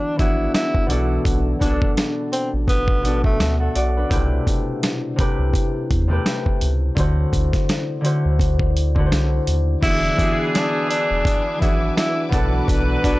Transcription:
Already playing: harp E3 B3 D4 F#4 G#4, tenor saxophone D4
0.16 analog synth bass G#1, harp E3 B3 D4 F#4, tenor saxophone E4, kick, closed hi-hat
0.21 harp G#4
0.54 tenor saxophone E4, snare, closed hi-hat
0.75 kick
0.86 analog synth bass B1, harp B2 B3 D4 F#4, closed hi-hat
0.91 harp A4
1.25 analog synth bass B1, kick, closed hi-hat
1.59 analog synth bass B1, harp B2 B3 D4 F#4, tenor saxophone D4, kick, closed hi-hat
1.64 harp G#4
1.70 harp A4
1.82 kick
1.97 snare, closed hi-hat
2.33 tenor saxophone C4, closed hi-hat
2.54 analog synth bass A1
2.68 tenor saxophone B3, kick, closed hi-hat
2.88 kick
3.02 harp B2 B3 D4 F#4, closed hi-hat
3.07 harp A4
3.24 tenor saxophone A3, kick
3.40 analog synth bass D2, snare, closed hi-hat
3.60 harp A4 F#5
3.76 analog synth bass B1, harp F#4 D5, closed hi-hat
3.97 harp D4 B4
4.08 analog synth bass C2, harp B2 A3 E4 G4, kick, closed hi-hat
4.13 harp C3 B4
4.47 kick, closed hi-hat
4.83 snare, closed hi-hat
5.16 harp C3 A3 E4 G4, kick, closed hi-hat
5.21 harp B4
5.39 analog synth bass C2
5.54 kick, closed hi-hat
5.91 analog synth bass E2, kick, closed hi-hat
6.08 harp C3 A3 E4 G4
6.12 harp B4
6.26 snare, closed hi-hat
6.46 kick
6.61 analog synth bass C#2, closed hi-hat
6.95 analog synth bass D2, harp D3 A3 E4 F#4, kick, closed hi-hat
7.00 harp C5
7.33 analog synth bass D2, kick, closed hi-hat
7.53 kick, snare, closed hi-hat
7.69 snare, closed hi-hat
8.01 harp D3 A3 E4 F#4, closed hi-hat
8.05 harp C5
8.25 analog synth bass D2
8.39 kick, closed hi-hat
8.59 kick
8.77 closed hi-hat
8.95 harp D3 A3 E4 F#4, kick
9.00 harp B4
9.06 harp C5
9.12 analog synth bass C2, snare, closed hi-hat
9.47 analog synth bass D#2, closed hi-hat
9.81 analog synth bass E1, harp E3 B3 D4 F#4, horn section E3 D4 G#4, tenor saxophone E4, string section B4 E5 G#5 D6, kick, closed hi-hat, crash
9.85 harp G#4
10.17 harp E3 B3 D4 F#4, kick, closed hi-hat
10.21 harp G4
10.28 harp G#4
10.55 tenor saxophone D4, snare, closed hi-hat
10.90 tenor saxophone D4, closed hi-hat
11.11 analog synth bass E1
11.25 kick, closed hi-hat
11.59 analog synth bass G#1, harp E3 B3 D4 F#4, tenor saxophone E4, kick, closed hi-hat
11.63 harp G#4
11.97 tenor saxophone E4, snare, closed hi-hat
12.29 analog synth bass B1, harp B2 B3 D4 F#4, horn section F#3 D4 B4, kick, closed hi-hat
12.33 harp A4, string section F#5 A5
12.68 analog synth bass B1, kick, closed hi-hat
13.02 analog synth bass B1, harp B2 B3 D4 F#4, tenor saxophone D4, kick, closed hi-hat
13.06 harp G#4
13.13 harp A4

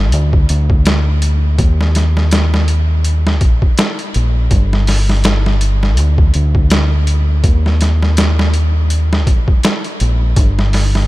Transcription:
Already playing: fingered electric bass G1
0.12 fingered electric bass D2, closed hi-hat
0.33 kick
0.49 fingered electric bass D2, closed hi-hat
0.70 kick
0.86 snare, closed hi-hat
1.22 closed hi-hat
1.58 fingered electric bass D#2, kick, closed hi-hat
1.81 snare
1.95 snare, closed hi-hat
2.17 snare
2.31 snare, closed hi-hat
2.54 snare
2.68 closed hi-hat
3.04 closed hi-hat
3.27 snare
3.41 fingered electric bass A#1, kick, closed hi-hat
3.62 kick
3.78 snare, closed hi-hat
3.99 closed hi-hat
4.14 fingered electric bass A#1, closed hi-hat
4.51 fingered electric bass G1, kick, closed hi-hat
4.73 snare
4.87 snare, open hi-hat
5.09 snare
5.24 snare, closed hi-hat
5.46 snare
5.61 closed hi-hat
5.83 snare
5.97 fingered electric bass D2, closed hi-hat
6.18 kick
6.34 fingered electric bass D2, closed hi-hat
6.55 kick
6.70 snare, closed hi-hat
7.07 closed hi-hat
7.44 fingered electric bass D#2, kick, closed hi-hat
7.66 snare
7.81 snare, closed hi-hat
8.03 snare
8.17 snare, closed hi-hat
8.39 snare
8.54 closed hi-hat
8.90 closed hi-hat
9.13 snare
9.27 fingered electric bass A#1, kick, closed hi-hat
9.48 kick
9.63 snare, closed hi-hat
9.84 closed hi-hat
10.00 fingered electric bass A#1, closed hi-hat
10.36 fingered electric bass G1, kick, closed hi-hat
10.59 snare
10.73 snare, open hi-hat
10.95 snare

